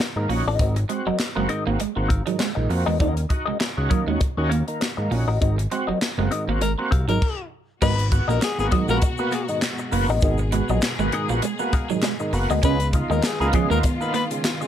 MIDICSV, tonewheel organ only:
0, 0, Header, 1, 2, 480
1, 0, Start_track
1, 0, Tempo, 601805
1, 476, Time_signature, 4, 2, 24, 8
1, 11703, End_track
2, 0, Start_track
2, 0, Title_t, "Tonewheel organ"
2, 0, Program_c, 0, 16
2, 129, Note_on_c, 0, 51, 57
2, 130, Note_on_c, 0, 58, 55
2, 230, Note_on_c, 0, 61, 71
2, 233, Note_on_c, 0, 63, 68
2, 237, Note_off_c, 0, 51, 0
2, 237, Note_on_c, 0, 66, 85
2, 238, Note_off_c, 0, 58, 0
2, 369, Note_off_c, 0, 61, 0
2, 370, Note_off_c, 0, 63, 0
2, 372, Note_off_c, 0, 66, 0
2, 473, Note_on_c, 0, 44, 58
2, 474, Note_on_c, 0, 51, 53
2, 610, Note_off_c, 0, 44, 0
2, 611, Note_off_c, 0, 51, 0
2, 709, Note_on_c, 0, 60, 69
2, 715, Note_on_c, 0, 66, 69
2, 849, Note_off_c, 0, 60, 0
2, 852, Note_off_c, 0, 66, 0
2, 1081, Note_on_c, 0, 58, 72
2, 1083, Note_on_c, 0, 60, 61
2, 1086, Note_on_c, 0, 66, 86
2, 1189, Note_on_c, 0, 44, 54
2, 1189, Note_on_c, 0, 51, 62
2, 1193, Note_off_c, 0, 58, 0
2, 1194, Note_off_c, 0, 60, 0
2, 1196, Note_off_c, 0, 66, 0
2, 1322, Note_on_c, 0, 58, 72
2, 1323, Note_on_c, 0, 60, 76
2, 1327, Note_on_c, 0, 66, 80
2, 1328, Note_off_c, 0, 44, 0
2, 1329, Note_off_c, 0, 51, 0
2, 1434, Note_off_c, 0, 58, 0
2, 1434, Note_off_c, 0, 60, 0
2, 1436, Note_off_c, 0, 66, 0
2, 1562, Note_on_c, 0, 58, 80
2, 1562, Note_on_c, 0, 60, 75
2, 1566, Note_on_c, 0, 66, 87
2, 1674, Note_off_c, 0, 58, 0
2, 1674, Note_off_c, 0, 60, 0
2, 1676, Note_off_c, 0, 66, 0
2, 1805, Note_on_c, 0, 44, 55
2, 1806, Note_on_c, 0, 51, 61
2, 1912, Note_on_c, 0, 60, 40
2, 1912, Note_on_c, 0, 66, 43
2, 1916, Note_off_c, 0, 44, 0
2, 1916, Note_off_c, 0, 51, 0
2, 1968, Note_off_c, 0, 60, 0
2, 1968, Note_off_c, 0, 66, 0
2, 2043, Note_on_c, 0, 44, 58
2, 2043, Note_on_c, 0, 51, 63
2, 2148, Note_on_c, 0, 58, 77
2, 2150, Note_on_c, 0, 60, 66
2, 2151, Note_on_c, 0, 66, 81
2, 2154, Note_off_c, 0, 44, 0
2, 2154, Note_off_c, 0, 51, 0
2, 2288, Note_off_c, 0, 58, 0
2, 2289, Note_off_c, 0, 60, 0
2, 2290, Note_off_c, 0, 66, 0
2, 2390, Note_on_c, 0, 51, 60
2, 2391, Note_on_c, 0, 58, 57
2, 2529, Note_off_c, 0, 51, 0
2, 2530, Note_off_c, 0, 58, 0
2, 2626, Note_on_c, 0, 63, 63
2, 2631, Note_on_c, 0, 66, 66
2, 2767, Note_off_c, 0, 63, 0
2, 2770, Note_off_c, 0, 66, 0
2, 3009, Note_on_c, 0, 61, 72
2, 3012, Note_on_c, 0, 63, 75
2, 3013, Note_on_c, 0, 66, 72
2, 3114, Note_on_c, 0, 58, 55
2, 3115, Note_on_c, 0, 51, 67
2, 3117, Note_off_c, 0, 61, 0
2, 3119, Note_off_c, 0, 63, 0
2, 3120, Note_off_c, 0, 66, 0
2, 3246, Note_on_c, 0, 61, 73
2, 3247, Note_on_c, 0, 63, 76
2, 3249, Note_on_c, 0, 66, 88
2, 3251, Note_off_c, 0, 58, 0
2, 3252, Note_off_c, 0, 51, 0
2, 3356, Note_off_c, 0, 61, 0
2, 3357, Note_off_c, 0, 63, 0
2, 3357, Note_off_c, 0, 66, 0
2, 3489, Note_on_c, 0, 61, 78
2, 3492, Note_on_c, 0, 63, 70
2, 3495, Note_on_c, 0, 66, 93
2, 3598, Note_off_c, 0, 61, 0
2, 3599, Note_off_c, 0, 63, 0
2, 3600, Note_off_c, 0, 66, 0
2, 3734, Note_on_c, 0, 51, 56
2, 3735, Note_on_c, 0, 58, 60
2, 3837, Note_on_c, 0, 63, 38
2, 3839, Note_on_c, 0, 66, 42
2, 3840, Note_off_c, 0, 51, 0
2, 3840, Note_off_c, 0, 58, 0
2, 3891, Note_off_c, 0, 63, 0
2, 3892, Note_off_c, 0, 66, 0
2, 3974, Note_on_c, 0, 51, 61
2, 3974, Note_on_c, 0, 58, 64
2, 4078, Note_on_c, 0, 61, 71
2, 4080, Note_off_c, 0, 51, 0
2, 4080, Note_off_c, 0, 58, 0
2, 4081, Note_on_c, 0, 63, 69
2, 4084, Note_on_c, 0, 66, 77
2, 4213, Note_off_c, 0, 61, 0
2, 4215, Note_off_c, 0, 63, 0
2, 4216, Note_off_c, 0, 66, 0
2, 4319, Note_on_c, 0, 44, 57
2, 4320, Note_on_c, 0, 51, 58
2, 4454, Note_off_c, 0, 44, 0
2, 4454, Note_off_c, 0, 51, 0
2, 4558, Note_on_c, 0, 60, 61
2, 4561, Note_on_c, 0, 66, 78
2, 4694, Note_off_c, 0, 60, 0
2, 4695, Note_off_c, 0, 66, 0
2, 4929, Note_on_c, 0, 58, 80
2, 4931, Note_on_c, 0, 60, 70
2, 4934, Note_on_c, 0, 66, 73
2, 5037, Note_on_c, 0, 51, 61
2, 5038, Note_off_c, 0, 58, 0
2, 5038, Note_on_c, 0, 44, 62
2, 5039, Note_off_c, 0, 60, 0
2, 5041, Note_off_c, 0, 66, 0
2, 5169, Note_on_c, 0, 58, 76
2, 5169, Note_on_c, 0, 60, 63
2, 5173, Note_off_c, 0, 51, 0
2, 5173, Note_on_c, 0, 66, 83
2, 5174, Note_off_c, 0, 44, 0
2, 5278, Note_off_c, 0, 58, 0
2, 5278, Note_off_c, 0, 60, 0
2, 5280, Note_off_c, 0, 66, 0
2, 5409, Note_on_c, 0, 58, 79
2, 5413, Note_on_c, 0, 60, 76
2, 5415, Note_on_c, 0, 66, 86
2, 5518, Note_off_c, 0, 58, 0
2, 5520, Note_off_c, 0, 60, 0
2, 5521, Note_off_c, 0, 66, 0
2, 5649, Note_on_c, 0, 44, 55
2, 5651, Note_on_c, 0, 51, 53
2, 5758, Note_off_c, 0, 44, 0
2, 5759, Note_off_c, 0, 51, 0
2, 6236, Note_on_c, 0, 44, 63
2, 6236, Note_on_c, 0, 51, 60
2, 6373, Note_off_c, 0, 44, 0
2, 6373, Note_off_c, 0, 51, 0
2, 6474, Note_on_c, 0, 59, 63
2, 6480, Note_on_c, 0, 66, 80
2, 6611, Note_off_c, 0, 59, 0
2, 6615, Note_off_c, 0, 66, 0
2, 6850, Note_on_c, 0, 58, 82
2, 6852, Note_on_c, 0, 59, 64
2, 6856, Note_on_c, 0, 66, 84
2, 6957, Note_on_c, 0, 51, 58
2, 6958, Note_on_c, 0, 44, 62
2, 6959, Note_off_c, 0, 58, 0
2, 6959, Note_off_c, 0, 59, 0
2, 6961, Note_off_c, 0, 66, 0
2, 7086, Note_on_c, 0, 58, 70
2, 7087, Note_on_c, 0, 59, 71
2, 7093, Note_off_c, 0, 51, 0
2, 7093, Note_on_c, 0, 66, 82
2, 7094, Note_off_c, 0, 44, 0
2, 7196, Note_off_c, 0, 58, 0
2, 7197, Note_off_c, 0, 59, 0
2, 7200, Note_off_c, 0, 66, 0
2, 7331, Note_on_c, 0, 58, 89
2, 7334, Note_on_c, 0, 59, 75
2, 7334, Note_on_c, 0, 66, 96
2, 7439, Note_off_c, 0, 58, 0
2, 7440, Note_off_c, 0, 59, 0
2, 7440, Note_off_c, 0, 66, 0
2, 7566, Note_on_c, 0, 44, 57
2, 7567, Note_on_c, 0, 51, 54
2, 7676, Note_off_c, 0, 44, 0
2, 7677, Note_off_c, 0, 51, 0
2, 7911, Note_on_c, 0, 58, 92
2, 7915, Note_on_c, 0, 59, 90
2, 7917, Note_on_c, 0, 66, 108
2, 8050, Note_off_c, 0, 58, 0
2, 8052, Note_off_c, 0, 59, 0
2, 8053, Note_off_c, 0, 66, 0
2, 8157, Note_on_c, 0, 44, 62
2, 8157, Note_on_c, 0, 51, 63
2, 8293, Note_off_c, 0, 44, 0
2, 8293, Note_off_c, 0, 51, 0
2, 8393, Note_on_c, 0, 59, 69
2, 8397, Note_on_c, 0, 66, 75
2, 8531, Note_off_c, 0, 59, 0
2, 8533, Note_off_c, 0, 66, 0
2, 8770, Note_on_c, 0, 58, 78
2, 8771, Note_on_c, 0, 59, 75
2, 8772, Note_on_c, 0, 66, 91
2, 8876, Note_on_c, 0, 51, 63
2, 8877, Note_on_c, 0, 44, 64
2, 8878, Note_off_c, 0, 58, 0
2, 8879, Note_off_c, 0, 59, 0
2, 8879, Note_off_c, 0, 66, 0
2, 9007, Note_on_c, 0, 58, 75
2, 9008, Note_on_c, 0, 59, 72
2, 9011, Note_on_c, 0, 66, 87
2, 9012, Note_off_c, 0, 51, 0
2, 9013, Note_off_c, 0, 44, 0
2, 9116, Note_off_c, 0, 58, 0
2, 9117, Note_off_c, 0, 59, 0
2, 9118, Note_off_c, 0, 66, 0
2, 9248, Note_on_c, 0, 58, 85
2, 9250, Note_on_c, 0, 59, 79
2, 9252, Note_on_c, 0, 66, 94
2, 9356, Note_off_c, 0, 58, 0
2, 9358, Note_off_c, 0, 59, 0
2, 9359, Note_off_c, 0, 66, 0
2, 9489, Note_on_c, 0, 51, 55
2, 9491, Note_on_c, 0, 44, 60
2, 9593, Note_on_c, 0, 59, 39
2, 9594, Note_on_c, 0, 66, 46
2, 9597, Note_off_c, 0, 51, 0
2, 9598, Note_off_c, 0, 44, 0
2, 9648, Note_off_c, 0, 59, 0
2, 9649, Note_off_c, 0, 66, 0
2, 9728, Note_on_c, 0, 44, 57
2, 9729, Note_on_c, 0, 51, 62
2, 9834, Note_on_c, 0, 58, 75
2, 9836, Note_off_c, 0, 44, 0
2, 9836, Note_on_c, 0, 59, 70
2, 9837, Note_off_c, 0, 51, 0
2, 9839, Note_on_c, 0, 66, 91
2, 9971, Note_off_c, 0, 58, 0
2, 9972, Note_off_c, 0, 59, 0
2, 9973, Note_off_c, 0, 66, 0
2, 10075, Note_on_c, 0, 49, 61
2, 10075, Note_on_c, 0, 56, 60
2, 10211, Note_off_c, 0, 49, 0
2, 10211, Note_off_c, 0, 56, 0
2, 10317, Note_on_c, 0, 63, 69
2, 10322, Note_on_c, 0, 65, 75
2, 10452, Note_off_c, 0, 63, 0
2, 10455, Note_off_c, 0, 65, 0
2, 10690, Note_on_c, 0, 58, 75
2, 10690, Note_on_c, 0, 59, 67
2, 10693, Note_on_c, 0, 63, 66
2, 10694, Note_on_c, 0, 65, 88
2, 10797, Note_off_c, 0, 58, 0
2, 10798, Note_off_c, 0, 59, 0
2, 10798, Note_on_c, 0, 56, 63
2, 10799, Note_off_c, 0, 63, 0
2, 10799, Note_off_c, 0, 65, 0
2, 10799, Note_on_c, 0, 49, 70
2, 10928, Note_on_c, 0, 58, 81
2, 10932, Note_off_c, 0, 56, 0
2, 10932, Note_on_c, 0, 59, 80
2, 10933, Note_off_c, 0, 49, 0
2, 10934, Note_on_c, 0, 63, 75
2, 10934, Note_on_c, 0, 65, 89
2, 11037, Note_off_c, 0, 58, 0
2, 11038, Note_off_c, 0, 59, 0
2, 11039, Note_off_c, 0, 63, 0
2, 11039, Note_off_c, 0, 65, 0
2, 11170, Note_on_c, 0, 58, 82
2, 11172, Note_on_c, 0, 59, 80
2, 11173, Note_on_c, 0, 63, 69
2, 11174, Note_on_c, 0, 65, 90
2, 11278, Note_off_c, 0, 58, 0
2, 11278, Note_off_c, 0, 59, 0
2, 11279, Note_off_c, 0, 63, 0
2, 11279, Note_off_c, 0, 65, 0
2, 11413, Note_on_c, 0, 49, 56
2, 11416, Note_on_c, 0, 56, 59
2, 11519, Note_off_c, 0, 49, 0
2, 11520, Note_off_c, 0, 56, 0
2, 11520, Note_on_c, 0, 63, 44
2, 11520, Note_on_c, 0, 65, 42
2, 11571, Note_off_c, 0, 65, 0
2, 11572, Note_off_c, 0, 63, 0
2, 11659, Note_on_c, 0, 49, 63
2, 11660, Note_on_c, 0, 56, 61
2, 11703, Note_off_c, 0, 49, 0
2, 11703, Note_off_c, 0, 56, 0
2, 11703, End_track
0, 0, End_of_file